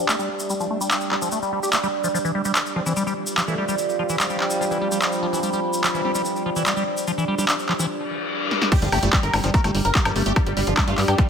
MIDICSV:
0, 0, Header, 1, 10, 480
1, 0, Start_track
1, 0, Tempo, 410959
1, 583, Time_signature, 4, 2, 24, 8
1, 13191, End_track
2, 0, Start_track
2, 0, Title_t, "Ambient pad"
2, 0, Program_c, 0, 92
2, 0, Note_on_c, 0, 67, 80
2, 0, Note_on_c, 0, 74, 82
2, 0, Note_on_c, 0, 79, 90
2, 2503, Note_off_c, 0, 79, 0
2, 2503, Note_on_c, 0, 65, 76
2, 3005, Note_on_c, 0, 72, 78
2, 3296, Note_on_c, 0, 77, 78
2, 3682, Note_off_c, 0, 67, 0
2, 3839, Note_off_c, 0, 74, 0
2, 6643, Note_on_c, 0, 79, 81
2, 6786, Note_off_c, 0, 77, 0
2, 9222, Note_off_c, 0, 72, 0
2, 9223, Note_off_c, 0, 65, 0
2, 9223, Note_off_c, 0, 79, 0
2, 10183, Note_on_c, 0, 67, 97
2, 10575, Note_on_c, 0, 74, 81
2, 13191, Note_off_c, 0, 67, 0
2, 13191, Note_off_c, 0, 74, 0
2, 13191, End_track
3, 0, Start_track
3, 0, Title_t, "Wobble bass"
3, 0, Program_c, 1, 39
3, 3222, Note_on_c, 1, 60, 89
3, 3299, Note_off_c, 1, 60, 0
3, 3343, Note_on_c, 1, 60, 80
3, 3420, Note_off_c, 1, 60, 0
3, 4063, Note_on_c, 1, 57, 94
3, 4245, Note_off_c, 1, 57, 0
3, 5142, Note_on_c, 1, 55, 95
3, 5815, Note_off_c, 1, 55, 0
3, 7063, Note_on_c, 1, 60, 88
3, 7140, Note_off_c, 1, 60, 0
3, 7183, Note_on_c, 1, 60, 78
3, 7260, Note_off_c, 1, 60, 0
3, 8623, Note_on_c, 1, 62, 91
3, 8700, Note_off_c, 1, 62, 0
3, 8743, Note_on_c, 1, 62, 78
3, 8820, Note_off_c, 1, 62, 0
3, 9103, Note_on_c, 1, 60, 88
3, 9180, Note_off_c, 1, 60, 0
3, 10903, Note_on_c, 1, 60, 91
3, 10980, Note_off_c, 1, 60, 0
3, 11022, Note_on_c, 1, 60, 82
3, 11099, Note_off_c, 1, 60, 0
3, 11743, Note_on_c, 1, 58, 96
3, 11925, Note_off_c, 1, 58, 0
3, 12823, Note_on_c, 1, 55, 96
3, 13191, Note_off_c, 1, 55, 0
3, 13191, End_track
4, 0, Start_track
4, 0, Title_t, "Synth drone"
4, 0, Program_c, 2, 95
4, 0, Note_on_c, 2, 55, 79
4, 0, Note_on_c, 2, 62, 77
4, 10169, Note_off_c, 2, 55, 0
4, 10169, Note_off_c, 2, 62, 0
4, 10183, Note_on_c, 2, 55, 80
4, 10183, Note_on_c, 2, 62, 80
4, 13191, Note_off_c, 2, 55, 0
4, 13191, Note_off_c, 2, 62, 0
4, 13191, End_track
5, 0, Start_track
5, 0, Title_t, "Acid bass"
5, 0, Program_c, 3, 38
5, 103, Note_on_c, 3, 57, 83
5, 185, Note_off_c, 3, 57, 0
5, 223, Note_on_c, 3, 55, 73
5, 337, Note_off_c, 3, 55, 0
5, 583, Note_on_c, 3, 55, 81
5, 633, Note_off_c, 3, 55, 0
5, 703, Note_on_c, 3, 53, 75
5, 785, Note_off_c, 3, 53, 0
5, 823, Note_on_c, 3, 57, 76
5, 905, Note_off_c, 3, 57, 0
5, 943, Note_on_c, 3, 55, 80
5, 1057, Note_off_c, 3, 55, 0
5, 1303, Note_on_c, 3, 55, 73
5, 1352, Note_off_c, 3, 55, 0
5, 1423, Note_on_c, 3, 53, 77
5, 1505, Note_off_c, 3, 53, 0
5, 1543, Note_on_c, 3, 57, 81
5, 1626, Note_off_c, 3, 57, 0
5, 1663, Note_on_c, 3, 55, 75
5, 1777, Note_off_c, 3, 55, 0
5, 1783, Note_on_c, 3, 55, 76
5, 1865, Note_off_c, 3, 55, 0
5, 1903, Note_on_c, 3, 67, 74
5, 1985, Note_off_c, 3, 67, 0
5, 2023, Note_on_c, 3, 57, 82
5, 2072, Note_off_c, 3, 57, 0
5, 2143, Note_on_c, 3, 55, 98
5, 2192, Note_off_c, 3, 55, 0
5, 2383, Note_on_c, 3, 53, 77
5, 2432, Note_off_c, 3, 53, 0
5, 2503, Note_on_c, 3, 53, 83
5, 2553, Note_off_c, 3, 53, 0
5, 2623, Note_on_c, 3, 52, 78
5, 2705, Note_off_c, 3, 52, 0
5, 2743, Note_on_c, 3, 55, 75
5, 2825, Note_off_c, 3, 55, 0
5, 2863, Note_on_c, 3, 55, 79
5, 2945, Note_off_c, 3, 55, 0
5, 3223, Note_on_c, 3, 53, 74
5, 3272, Note_off_c, 3, 53, 0
5, 3343, Note_on_c, 3, 52, 78
5, 3425, Note_off_c, 3, 52, 0
5, 3462, Note_on_c, 3, 55, 83
5, 3545, Note_off_c, 3, 55, 0
5, 3583, Note_on_c, 3, 55, 74
5, 3665, Note_off_c, 3, 55, 0
5, 3943, Note_on_c, 3, 53, 81
5, 3992, Note_off_c, 3, 53, 0
5, 4063, Note_on_c, 3, 52, 76
5, 4145, Note_off_c, 3, 52, 0
5, 4183, Note_on_c, 3, 55, 75
5, 4265, Note_off_c, 3, 55, 0
5, 4303, Note_on_c, 3, 55, 75
5, 4385, Note_off_c, 3, 55, 0
5, 4662, Note_on_c, 3, 53, 78
5, 4712, Note_off_c, 3, 53, 0
5, 4782, Note_on_c, 3, 52, 80
5, 4865, Note_off_c, 3, 52, 0
5, 4903, Note_on_c, 3, 55, 81
5, 4985, Note_off_c, 3, 55, 0
5, 5023, Note_on_c, 3, 55, 77
5, 5105, Note_off_c, 3, 55, 0
5, 5382, Note_on_c, 3, 53, 86
5, 5432, Note_off_c, 3, 53, 0
5, 5502, Note_on_c, 3, 52, 75
5, 5585, Note_off_c, 3, 52, 0
5, 5623, Note_on_c, 3, 55, 77
5, 5705, Note_off_c, 3, 55, 0
5, 5743, Note_on_c, 3, 55, 79
5, 5825, Note_off_c, 3, 55, 0
5, 6103, Note_on_c, 3, 53, 75
5, 6152, Note_off_c, 3, 53, 0
5, 6223, Note_on_c, 3, 52, 78
5, 6305, Note_off_c, 3, 52, 0
5, 6343, Note_on_c, 3, 55, 82
5, 6425, Note_off_c, 3, 55, 0
5, 6463, Note_on_c, 3, 55, 77
5, 6545, Note_off_c, 3, 55, 0
5, 6823, Note_on_c, 3, 53, 81
5, 6873, Note_off_c, 3, 53, 0
5, 6943, Note_on_c, 3, 52, 79
5, 7026, Note_off_c, 3, 52, 0
5, 7063, Note_on_c, 3, 55, 77
5, 7145, Note_off_c, 3, 55, 0
5, 7183, Note_on_c, 3, 55, 77
5, 7265, Note_off_c, 3, 55, 0
5, 7543, Note_on_c, 3, 53, 77
5, 7592, Note_off_c, 3, 53, 0
5, 7663, Note_on_c, 3, 52, 75
5, 7745, Note_off_c, 3, 52, 0
5, 7783, Note_on_c, 3, 55, 81
5, 7865, Note_off_c, 3, 55, 0
5, 7903, Note_on_c, 3, 55, 76
5, 7985, Note_off_c, 3, 55, 0
5, 8263, Note_on_c, 3, 53, 83
5, 8313, Note_off_c, 3, 53, 0
5, 8383, Note_on_c, 3, 52, 76
5, 8465, Note_off_c, 3, 52, 0
5, 8503, Note_on_c, 3, 55, 76
5, 8585, Note_off_c, 3, 55, 0
5, 8623, Note_on_c, 3, 55, 80
5, 8706, Note_off_c, 3, 55, 0
5, 8983, Note_on_c, 3, 53, 76
5, 9032, Note_off_c, 3, 53, 0
5, 9103, Note_on_c, 3, 52, 76
5, 9185, Note_off_c, 3, 52, 0
5, 10183, Note_on_c, 3, 55, 84
5, 10232, Note_off_c, 3, 55, 0
5, 10303, Note_on_c, 3, 53, 80
5, 10385, Note_off_c, 3, 53, 0
5, 10423, Note_on_c, 3, 57, 77
5, 10505, Note_off_c, 3, 57, 0
5, 10543, Note_on_c, 3, 57, 80
5, 10625, Note_off_c, 3, 57, 0
5, 10903, Note_on_c, 3, 55, 77
5, 10952, Note_off_c, 3, 55, 0
5, 11023, Note_on_c, 3, 53, 80
5, 11105, Note_off_c, 3, 53, 0
5, 11143, Note_on_c, 3, 57, 86
5, 11225, Note_off_c, 3, 57, 0
5, 11263, Note_on_c, 3, 57, 78
5, 11345, Note_off_c, 3, 57, 0
5, 11623, Note_on_c, 3, 55, 84
5, 11672, Note_off_c, 3, 55, 0
5, 11743, Note_on_c, 3, 53, 76
5, 11825, Note_off_c, 3, 53, 0
5, 11863, Note_on_c, 3, 57, 79
5, 11945, Note_off_c, 3, 57, 0
5, 11983, Note_on_c, 3, 57, 78
5, 12065, Note_off_c, 3, 57, 0
5, 12343, Note_on_c, 3, 55, 78
5, 12392, Note_off_c, 3, 55, 0
5, 12463, Note_on_c, 3, 53, 79
5, 12545, Note_off_c, 3, 53, 0
5, 12583, Note_on_c, 3, 57, 85
5, 12665, Note_off_c, 3, 57, 0
5, 12703, Note_on_c, 3, 57, 79
5, 12785, Note_off_c, 3, 57, 0
5, 13063, Note_on_c, 3, 55, 85
5, 13112, Note_off_c, 3, 55, 0
5, 13191, End_track
6, 0, Start_track
6, 0, Title_t, "Supersaw synth"
6, 0, Program_c, 4, 81
6, 10182, Note_on_c, 4, 67, 103
6, 10257, Note_off_c, 4, 67, 0
6, 10303, Note_on_c, 4, 55, 65
6, 10378, Note_off_c, 4, 55, 0
6, 10422, Note_on_c, 4, 67, 96
6, 10497, Note_off_c, 4, 67, 0
6, 10543, Note_on_c, 4, 55, 63
6, 10617, Note_off_c, 4, 55, 0
6, 10783, Note_on_c, 4, 70, 95
6, 10857, Note_off_c, 4, 70, 0
6, 10903, Note_on_c, 4, 55, 64
6, 10978, Note_off_c, 4, 55, 0
6, 11023, Note_on_c, 4, 55, 66
6, 11097, Note_off_c, 4, 55, 0
6, 11143, Note_on_c, 4, 70, 98
6, 11218, Note_off_c, 4, 70, 0
6, 11263, Note_on_c, 4, 55, 68
6, 11337, Note_off_c, 4, 55, 0
6, 11383, Note_on_c, 4, 55, 66
6, 11458, Note_off_c, 4, 55, 0
6, 11503, Note_on_c, 4, 70, 99
6, 11578, Note_off_c, 4, 70, 0
6, 11623, Note_on_c, 4, 55, 67
6, 11698, Note_off_c, 4, 55, 0
6, 11743, Note_on_c, 4, 55, 66
6, 11818, Note_off_c, 4, 55, 0
6, 11864, Note_on_c, 4, 55, 65
6, 11938, Note_off_c, 4, 55, 0
6, 11983, Note_on_c, 4, 67, 97
6, 12058, Note_off_c, 4, 67, 0
6, 12104, Note_on_c, 4, 55, 66
6, 12178, Note_off_c, 4, 55, 0
6, 12223, Note_on_c, 4, 55, 66
6, 12298, Note_off_c, 4, 55, 0
6, 12343, Note_on_c, 4, 55, 66
6, 12418, Note_off_c, 4, 55, 0
6, 12583, Note_on_c, 4, 55, 68
6, 12658, Note_off_c, 4, 55, 0
6, 12703, Note_on_c, 4, 65, 90
6, 12778, Note_off_c, 4, 65, 0
6, 12823, Note_on_c, 4, 55, 64
6, 12898, Note_off_c, 4, 55, 0
6, 12943, Note_on_c, 4, 67, 89
6, 13018, Note_off_c, 4, 67, 0
6, 13063, Note_on_c, 4, 55, 68
6, 13138, Note_off_c, 4, 55, 0
6, 13191, End_track
7, 0, Start_track
7, 0, Title_t, "Analog synth bass"
7, 0, Program_c, 5, 38
7, 10303, Note_on_c, 5, 31, 88
7, 10385, Note_off_c, 5, 31, 0
7, 10423, Note_on_c, 5, 31, 99
7, 10505, Note_off_c, 5, 31, 0
7, 10543, Note_on_c, 5, 31, 95
7, 10625, Note_off_c, 5, 31, 0
7, 10783, Note_on_c, 5, 31, 87
7, 10865, Note_off_c, 5, 31, 0
7, 10903, Note_on_c, 5, 31, 100
7, 10985, Note_off_c, 5, 31, 0
7, 11023, Note_on_c, 5, 31, 94
7, 11105, Note_off_c, 5, 31, 0
7, 11263, Note_on_c, 5, 31, 89
7, 11345, Note_off_c, 5, 31, 0
7, 11383, Note_on_c, 5, 31, 103
7, 11465, Note_off_c, 5, 31, 0
7, 11503, Note_on_c, 5, 31, 94
7, 11585, Note_off_c, 5, 31, 0
7, 11743, Note_on_c, 5, 31, 88
7, 11825, Note_off_c, 5, 31, 0
7, 11863, Note_on_c, 5, 31, 98
7, 11945, Note_off_c, 5, 31, 0
7, 11983, Note_on_c, 5, 31, 91
7, 12065, Note_off_c, 5, 31, 0
7, 12223, Note_on_c, 5, 31, 85
7, 12305, Note_off_c, 5, 31, 0
7, 12343, Note_on_c, 5, 31, 102
7, 12425, Note_off_c, 5, 31, 0
7, 12463, Note_on_c, 5, 31, 95
7, 12545, Note_off_c, 5, 31, 0
7, 12703, Note_on_c, 5, 43, 87
7, 12785, Note_off_c, 5, 43, 0
7, 12823, Note_on_c, 5, 43, 102
7, 12905, Note_off_c, 5, 43, 0
7, 12943, Note_on_c, 5, 43, 95
7, 13025, Note_off_c, 5, 43, 0
7, 13191, End_track
8, 0, Start_track
8, 0, Title_t, "Reverse cymbal"
8, 0, Program_c, 6, 119
8, 9223, Note_on_c, 6, 60, 77
8, 10183, Note_off_c, 6, 60, 0
8, 13191, End_track
9, 0, Start_track
9, 0, Title_t, "Sub drop"
9, 0, Program_c, 7, 103
9, 10183, Note_on_c, 7, 60, 77
9, 12103, Note_off_c, 7, 60, 0
9, 13191, End_track
10, 0, Start_track
10, 0, Title_t, "Drums"
10, 103, Note_on_c, 9, 39, 118
10, 106, Note_on_c, 9, 82, 67
10, 220, Note_off_c, 9, 39, 0
10, 223, Note_off_c, 9, 82, 0
10, 224, Note_on_c, 9, 82, 40
10, 341, Note_off_c, 9, 82, 0
10, 461, Note_on_c, 9, 82, 75
10, 578, Note_off_c, 9, 82, 0
10, 580, Note_on_c, 9, 82, 64
10, 697, Note_off_c, 9, 82, 0
10, 702, Note_on_c, 9, 82, 40
10, 819, Note_off_c, 9, 82, 0
10, 949, Note_on_c, 9, 82, 81
10, 1061, Note_off_c, 9, 82, 0
10, 1061, Note_on_c, 9, 82, 62
10, 1063, Note_on_c, 9, 39, 116
10, 1176, Note_off_c, 9, 82, 0
10, 1176, Note_on_c, 9, 82, 42
10, 1180, Note_off_c, 9, 39, 0
10, 1293, Note_off_c, 9, 82, 0
10, 1303, Note_on_c, 9, 39, 62
10, 1420, Note_off_c, 9, 39, 0
10, 1425, Note_on_c, 9, 82, 78
10, 1538, Note_off_c, 9, 82, 0
10, 1538, Note_on_c, 9, 82, 61
10, 1655, Note_off_c, 9, 82, 0
10, 1663, Note_on_c, 9, 82, 37
10, 1780, Note_off_c, 9, 82, 0
10, 1907, Note_on_c, 9, 82, 75
10, 2015, Note_off_c, 9, 82, 0
10, 2015, Note_on_c, 9, 82, 71
10, 2023, Note_on_c, 9, 39, 112
10, 2132, Note_off_c, 9, 82, 0
10, 2140, Note_off_c, 9, 39, 0
10, 2142, Note_on_c, 9, 82, 37
10, 2259, Note_off_c, 9, 82, 0
10, 2384, Note_on_c, 9, 82, 82
10, 2501, Note_off_c, 9, 82, 0
10, 2515, Note_on_c, 9, 82, 64
10, 2629, Note_off_c, 9, 82, 0
10, 2629, Note_on_c, 9, 82, 37
10, 2746, Note_off_c, 9, 82, 0
10, 2861, Note_on_c, 9, 82, 74
10, 2977, Note_off_c, 9, 82, 0
10, 2982, Note_on_c, 9, 82, 59
10, 2983, Note_on_c, 9, 39, 112
10, 3099, Note_off_c, 9, 82, 0
10, 3100, Note_off_c, 9, 39, 0
10, 3110, Note_on_c, 9, 82, 35
10, 3227, Note_off_c, 9, 82, 0
10, 3345, Note_on_c, 9, 82, 75
10, 3461, Note_off_c, 9, 82, 0
10, 3464, Note_on_c, 9, 82, 66
10, 3581, Note_off_c, 9, 82, 0
10, 3587, Note_on_c, 9, 82, 39
10, 3704, Note_off_c, 9, 82, 0
10, 3817, Note_on_c, 9, 82, 83
10, 3934, Note_off_c, 9, 82, 0
10, 3943, Note_on_c, 9, 39, 112
10, 3947, Note_on_c, 9, 82, 67
10, 4060, Note_off_c, 9, 39, 0
10, 4062, Note_off_c, 9, 82, 0
10, 4062, Note_on_c, 9, 82, 35
10, 4179, Note_off_c, 9, 82, 0
10, 4305, Note_on_c, 9, 82, 70
10, 4418, Note_off_c, 9, 82, 0
10, 4418, Note_on_c, 9, 82, 67
10, 4535, Note_off_c, 9, 82, 0
10, 4547, Note_on_c, 9, 82, 37
10, 4664, Note_off_c, 9, 82, 0
10, 4782, Note_on_c, 9, 82, 68
10, 4899, Note_off_c, 9, 82, 0
10, 4903, Note_on_c, 9, 39, 110
10, 4905, Note_on_c, 9, 82, 62
10, 5019, Note_off_c, 9, 82, 0
10, 5019, Note_on_c, 9, 82, 35
10, 5020, Note_off_c, 9, 39, 0
10, 5136, Note_off_c, 9, 82, 0
10, 5143, Note_on_c, 9, 39, 59
10, 5260, Note_off_c, 9, 39, 0
10, 5261, Note_on_c, 9, 82, 78
10, 5378, Note_off_c, 9, 82, 0
10, 5393, Note_on_c, 9, 82, 64
10, 5503, Note_off_c, 9, 82, 0
10, 5503, Note_on_c, 9, 82, 36
10, 5620, Note_off_c, 9, 82, 0
10, 5744, Note_on_c, 9, 82, 72
10, 5858, Note_off_c, 9, 82, 0
10, 5858, Note_on_c, 9, 82, 59
10, 5863, Note_on_c, 9, 39, 113
10, 5974, Note_off_c, 9, 82, 0
10, 5980, Note_off_c, 9, 39, 0
10, 5983, Note_on_c, 9, 82, 40
10, 6100, Note_off_c, 9, 82, 0
10, 6235, Note_on_c, 9, 82, 70
10, 6341, Note_off_c, 9, 82, 0
10, 6341, Note_on_c, 9, 82, 55
10, 6458, Note_off_c, 9, 82, 0
10, 6458, Note_on_c, 9, 82, 38
10, 6575, Note_off_c, 9, 82, 0
10, 6696, Note_on_c, 9, 82, 74
10, 6813, Note_off_c, 9, 82, 0
10, 6822, Note_on_c, 9, 82, 65
10, 6823, Note_on_c, 9, 39, 112
10, 6939, Note_off_c, 9, 82, 0
10, 6940, Note_off_c, 9, 39, 0
10, 6943, Note_on_c, 9, 82, 36
10, 7060, Note_off_c, 9, 82, 0
10, 7182, Note_on_c, 9, 82, 81
10, 7299, Note_off_c, 9, 82, 0
10, 7300, Note_on_c, 9, 82, 62
10, 7417, Note_off_c, 9, 82, 0
10, 7426, Note_on_c, 9, 82, 36
10, 7543, Note_off_c, 9, 82, 0
10, 7662, Note_on_c, 9, 82, 66
10, 7779, Note_off_c, 9, 82, 0
10, 7781, Note_on_c, 9, 82, 66
10, 7783, Note_on_c, 9, 39, 116
10, 7897, Note_off_c, 9, 82, 0
10, 7900, Note_off_c, 9, 39, 0
10, 7903, Note_on_c, 9, 82, 33
10, 8020, Note_off_c, 9, 82, 0
10, 8143, Note_on_c, 9, 82, 79
10, 8260, Note_off_c, 9, 82, 0
10, 8261, Note_on_c, 9, 82, 62
10, 8378, Note_off_c, 9, 82, 0
10, 8390, Note_on_c, 9, 82, 34
10, 8507, Note_off_c, 9, 82, 0
10, 8629, Note_on_c, 9, 82, 67
10, 8743, Note_on_c, 9, 39, 115
10, 8744, Note_off_c, 9, 82, 0
10, 8744, Note_on_c, 9, 82, 62
10, 8860, Note_off_c, 9, 39, 0
10, 8861, Note_off_c, 9, 82, 0
10, 8865, Note_on_c, 9, 82, 34
10, 8982, Note_off_c, 9, 82, 0
10, 8983, Note_on_c, 9, 39, 61
10, 9100, Note_off_c, 9, 39, 0
10, 9105, Note_on_c, 9, 82, 83
10, 9222, Note_off_c, 9, 82, 0
10, 9943, Note_on_c, 9, 38, 60
10, 10060, Note_off_c, 9, 38, 0
10, 10063, Note_on_c, 9, 38, 71
10, 10180, Note_off_c, 9, 38, 0
10, 10183, Note_on_c, 9, 36, 116
10, 10183, Note_on_c, 9, 42, 70
10, 10183, Note_on_c, 9, 49, 101
10, 10300, Note_off_c, 9, 36, 0
10, 10300, Note_off_c, 9, 42, 0
10, 10300, Note_off_c, 9, 49, 0
10, 10303, Note_on_c, 9, 42, 68
10, 10420, Note_off_c, 9, 42, 0
10, 10423, Note_on_c, 9, 46, 105
10, 10423, Note_on_c, 9, 76, 38
10, 10540, Note_off_c, 9, 46, 0
10, 10540, Note_off_c, 9, 76, 0
10, 10543, Note_on_c, 9, 42, 69
10, 10660, Note_off_c, 9, 42, 0
10, 10663, Note_on_c, 9, 36, 121
10, 10663, Note_on_c, 9, 39, 127
10, 10663, Note_on_c, 9, 42, 69
10, 10779, Note_off_c, 9, 36, 0
10, 10780, Note_off_c, 9, 39, 0
10, 10780, Note_off_c, 9, 42, 0
10, 10783, Note_on_c, 9, 42, 67
10, 10900, Note_off_c, 9, 42, 0
10, 10903, Note_on_c, 9, 46, 96
10, 10903, Note_on_c, 9, 76, 78
10, 11020, Note_off_c, 9, 46, 0
10, 11020, Note_off_c, 9, 76, 0
10, 11023, Note_on_c, 9, 42, 73
10, 11140, Note_off_c, 9, 42, 0
10, 11143, Note_on_c, 9, 36, 120
10, 11143, Note_on_c, 9, 42, 69
10, 11260, Note_off_c, 9, 36, 0
10, 11260, Note_off_c, 9, 42, 0
10, 11263, Note_on_c, 9, 42, 71
10, 11263, Note_on_c, 9, 76, 39
10, 11380, Note_off_c, 9, 42, 0
10, 11380, Note_off_c, 9, 76, 0
10, 11383, Note_on_c, 9, 46, 110
10, 11500, Note_off_c, 9, 46, 0
10, 11503, Note_on_c, 9, 42, 67
10, 11620, Note_off_c, 9, 42, 0
10, 11623, Note_on_c, 9, 36, 116
10, 11623, Note_on_c, 9, 39, 124
10, 11623, Note_on_c, 9, 42, 69
10, 11740, Note_off_c, 9, 36, 0
10, 11740, Note_off_c, 9, 39, 0
10, 11740, Note_off_c, 9, 42, 0
10, 11743, Note_on_c, 9, 42, 70
10, 11743, Note_on_c, 9, 76, 76
10, 11860, Note_off_c, 9, 42, 0
10, 11860, Note_off_c, 9, 76, 0
10, 11863, Note_on_c, 9, 46, 92
10, 11980, Note_off_c, 9, 46, 0
10, 11983, Note_on_c, 9, 42, 69
10, 12100, Note_off_c, 9, 42, 0
10, 12103, Note_on_c, 9, 36, 124
10, 12103, Note_on_c, 9, 42, 68
10, 12103, Note_on_c, 9, 76, 38
10, 12220, Note_off_c, 9, 36, 0
10, 12220, Note_off_c, 9, 42, 0
10, 12220, Note_off_c, 9, 76, 0
10, 12223, Note_on_c, 9, 42, 67
10, 12340, Note_off_c, 9, 42, 0
10, 12343, Note_on_c, 9, 46, 113
10, 12460, Note_off_c, 9, 46, 0
10, 12463, Note_on_c, 9, 42, 67
10, 12580, Note_off_c, 9, 42, 0
10, 12583, Note_on_c, 9, 36, 127
10, 12583, Note_on_c, 9, 39, 127
10, 12583, Note_on_c, 9, 42, 69
10, 12583, Note_on_c, 9, 76, 78
10, 12700, Note_off_c, 9, 36, 0
10, 12700, Note_off_c, 9, 39, 0
10, 12700, Note_off_c, 9, 42, 0
10, 12700, Note_off_c, 9, 76, 0
10, 12703, Note_on_c, 9, 42, 66
10, 12820, Note_off_c, 9, 42, 0
10, 12823, Note_on_c, 9, 39, 67
10, 12823, Note_on_c, 9, 46, 100
10, 12940, Note_off_c, 9, 39, 0
10, 12940, Note_off_c, 9, 46, 0
10, 12943, Note_on_c, 9, 42, 69
10, 12943, Note_on_c, 9, 76, 38
10, 13060, Note_off_c, 9, 42, 0
10, 13060, Note_off_c, 9, 76, 0
10, 13063, Note_on_c, 9, 36, 126
10, 13063, Note_on_c, 9, 42, 70
10, 13180, Note_off_c, 9, 36, 0
10, 13180, Note_off_c, 9, 42, 0
10, 13191, End_track
0, 0, End_of_file